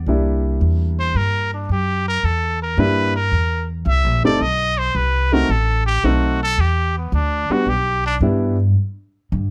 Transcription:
0.06 C2 G3 A#3 D4 E4
0.61 E2
1.00 C5
1.15 G2 A#4
1.54 D4
1.69 F#2 G4
2.08 A#4
2.23 E2 A4
2.62 A#4
2.78 G2 G3 A#3 D4 E4 B4
3.16 A#4
3.32 E2
3.86 C2 E5
4.04 A#1
4.23 G1 A3 C4 D#4 A4 D5
4.40 B1 D#5
4.78 C5
4.95 C2 B4
5.32 A3 C4 D#4 F#4 A#4
5.49 A1 A4
5.87 G4
6.04 B1 A3 C4 D#4 F#4 A4
6.43 A4
6.58 E2 G4
6.98 B3
7.12 D2 D4
7.49 G3 B3 D4 F#4, muted upright bass stroke
7.66 B1 G4
8.06 D4
8.21 G2 G3 B3 D4 E4
9.32 G2

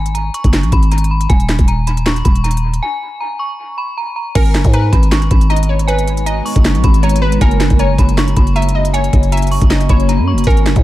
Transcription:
Already playing: G#1 G#5
0.06 closed hi-hat
0.15 A#5, closed hi-hat
0.34 C#6, closed hi-hat
0.44 F#1, kick, closed hi-hat
0.53 snare, clap, closed hi-hat
0.63 A#1, closed hi-hat
0.72 G#1 B5, kick, closed hi-hat
0.83 closed hi-hat
0.92 A#5, closed hi-hat
0.98 closed hi-hat
1.04 closed hi-hat
1.11 B5
1.21 closed hi-hat
1.29 D#1 G#5, kick, closed hi-hat
1.40 closed hi-hat
1.49 snare, clap, closed hi-hat
1.59 D#1, kick, closed hi-hat
1.68 A#5, closed hi-hat
1.87 B5, closed hi-hat
1.97 closed hi-hat
2.06 C#6, snare, clap, closed hi-hat
2.16 closed hi-hat
2.25 D#1 B5, kick, closed hi-hat
2.35 closed hi-hat
2.44 A#5, closed hi-hat
2.51 closed hi-hat
2.57 closed hi-hat
2.74 closed hi-hat
2.83 G#5
3.20 A#5
3.39 C#6
3.78 B5
3.97 A#5
4.16 A#5
4.35 G#1 G#3 B3 D#4 F#4 A#4 G#5, kick, closed hi-hat, crash
4.45 closed hi-hat
4.54 F#1, snare, clap, closed hi-hat
4.64 G#2, kick, closed hi-hat
4.73 B4 A#5, closed hi-hat
4.93 G#1 B5, kick, closed hi-hat
5.03 closed hi-hat
5.12 C#6, snare, clap, closed hi-hat
5.22 closed hi-hat
5.31 G#1 B5, kick, closed hi-hat
5.41 closed hi-hat
5.50 D#5 A#5, closed hi-hat
5.56 closed hi-hat
5.63 closed hi-hat
5.69 C#5
5.79 closed hi-hat
5.87 B4 G#5, closed hi-hat
5.98 closed hi-hat
6.07 closed hi-hat
6.17 closed hi-hat
6.26 D#5 A#5, closed hi-hat
6.45 C#6, open hi-hat
6.56 F#1, kick, closed hi-hat
6.65 snare, clap, closed hi-hat
6.75 A#1, closed hi-hat
6.84 G#1 B5, kick, closed hi-hat
6.94 closed hi-hat
7.03 C#5 A#5, closed hi-hat
7.09 closed hi-hat
7.16 closed hi-hat
7.22 B4 B5
7.32 closed hi-hat
7.41 F#1 A#3 C#4 A#4 G#5, kick, closed hi-hat
7.51 closed hi-hat
7.60 snare, clap, closed hi-hat
7.70 F#1, kick, closed hi-hat
7.79 C#5 A#5, closed hi-hat
7.98 F#1 B5, kick, closed hi-hat
8.09 closed hi-hat
8.18 C#6, snare, clap, closed hi-hat
8.28 closed hi-hat
8.37 F#1 B5, kick, closed hi-hat
8.47 closed hi-hat
8.56 E5 A#5, closed hi-hat
8.62 closed hi-hat
8.69 closed hi-hat
8.75 D#5
8.85 closed hi-hat
8.94 C#5 G#5, closed hi-hat
9.04 closed hi-hat
9.13 F#1, kick, closed hi-hat
9.23 closed hi-hat
9.32 E5 A#5, closed hi-hat
9.37 closed hi-hat
9.42 closed hi-hat
9.47 closed hi-hat
9.51 C#6, open hi-hat
9.62 F#1, kick, closed hi-hat
9.70 D#5, snare, clap, closed hi-hat
9.80 closed hi-hat
9.89 F#1 C#5 B5, kick, closed hi-hat
10.00 closed hi-hat
10.09 A#5, closed hi-hat
10.19 F#2
10.28 C#6
10.33 F#1
10.38 closed hi-hat
10.44 G#1 G#3 B3 D#4 A#4 G#5, kick, closed hi-hat
10.50 closed hi-hat
10.57 closed hi-hat
10.66 F#1, snare, clap, closed hi-hat
10.76 G#2, kick, closed hi-hat

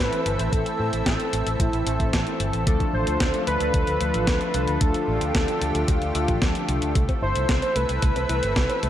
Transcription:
Already playing: E3 A3 C4 A4 B4 E5
0.13 closed hi-hat
0.26 G1 E3 A3 C4 A4, closed hi-hat
0.39 A1, closed hi-hat
0.52 A1 E3 A3 C4 A4, kick, closed hi-hat
0.66 closed hi-hat
0.80 A2
0.93 A1, closed hi-hat
1.06 A1 A4, kick, snare, closed hi-hat
1.20 closed hi-hat
1.33 A1, closed hi-hat
1.46 A1, closed hi-hat
1.60 A1 E4, kick, closed hi-hat
1.73 A1, closed hi-hat
1.86 A1 E3 A3 C4 A4, closed hi-hat
2.00 A2, kick, closed hi-hat
2.13 A1, kick, snare, closed hi-hat
2.27 closed hi-hat
2.40 G1, closed hi-hat
2.53 A1, closed hi-hat
2.67 D2 D3 F3 A3 D4 F4 A4, kick, closed hi-hat
2.80 kick, closed hi-hat
2.94 A1 C5
3.07 D2, closed hi-hat
3.20 D2, kick, snare, closed hi-hat
3.34 closed hi-hat
3.47 D2 B4, closed hi-hat
3.60 D2, closed hi-hat
3.74 D2, kick, closed hi-hat
3.87 D2, closed hi-hat
4.01 D2, closed hi-hat
4.14 A1, closed hi-hat
4.27 D2, kick, snare, closed hi-hat
4.41 closed hi-hat
4.54 C2 F3 A3 D4 A4, closed hi-hat
4.68 D2, closed hi-hat
4.81 D2 F3 A3 D4 G4 A4, kick, closed hi-hat
4.94 closed hi-hat
5.08 A1
5.21 D2, closed hi-hat
5.35 D2 A4, kick, snare, closed hi-hat
5.48 closed hi-hat
5.62 D2, closed hi-hat
5.75 D2, closed hi-hat
5.88 D2 F4, kick, closed hi-hat
6.02 D2, closed hi-hat
6.15 D2 F3 A3 D4 A4, closed hi-hat
6.28 A1, kick, closed hi-hat
6.42 D2, kick, snare, closed hi-hat
6.55 closed hi-hat
6.69 C2, closed hi-hat
6.82 D2, closed hi-hat
6.95 C2 E3 A3 C4 A4 E5, kick, closed hi-hat
7.09 C4, kick, closed hi-hat
7.22 G1 E4 C5
7.35 C2, closed hi-hat
7.49 C2 A4, kick, snare, closed hi-hat
7.62 C5, closed hi-hat
7.76 C2 A3 B4, closed hi-hat
7.89 C2, closed hi-hat
8.02 C2 A3, kick, closed hi-hat
8.16 C2 C4, closed hi-hat
8.29 C2 E4, closed hi-hat
8.43 G1, closed hi-hat
8.56 C2 A4, kick, snare, closed hi-hat
8.69 C5, closed hi-hat
8.83 C2 A3, closed hi-hat

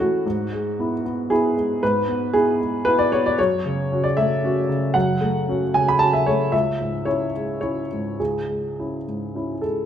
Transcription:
Already playing: A2 E3 C#4 E4 A4 C#5
0.00 A3 F#4
0.26 G#2
0.52 G#3
0.79 B3 E4
1.05 B3
1.30 B3 E4 G#4
1.57 G#3
1.83 G#2 B4
2.08 B3
2.33 B3 E4 G#4
2.61 G#3
2.85 B3 E4 B4
2.99 D5
3.12 B3 C#5
3.26 D5
3.39 F#2 C#5
3.66 C#3
3.92 C#4 F#4
4.04 D5
4.17 A3 E5
4.44 C#4 F#4
4.69 C#3
4.94 F#2 F#5
5.21 A3
5.49 C#4 F#4
5.74 C#3 G#5
5.88 B5
5.99 C#4 F#4 A5
6.13 E5
6.26 A3 C#5
6.52 C#2 E5
6.81 G#2
7.05 C#4 E4 C#5
7.35 G#3
7.61 C#4 E4 C#5
7.93 G#2
8.20 C#2 G#4
8.50 G#3
8.79 C#4 E4
9.08 G#2
9.35 C#4 E4
9.62 G#3 A4

